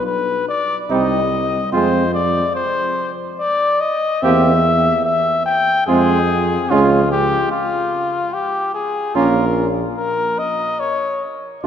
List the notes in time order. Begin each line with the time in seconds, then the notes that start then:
0.07 B4
0.48 D5
0.90 C2 G3 C4 D#4 D#5
1.73 F2 G#3 C4 F4 C5
2.15 D5
2.56 C5
3.39 D5
3.80 D#5
4.22 E2 A#3 C4 G4 E5
5.05 E5
5.46 G5
5.87 F2 G#3 C4 F4 G#4
6.70 C#2 G#3 C#4 F4
7.11 G4
7.52 F4
8.34 G4
8.74 G#4
9.15 A#1 A#3 C#4 F4 A#4
9.97 A#4
10.39 D#5
10.80 C#5
11.63 D5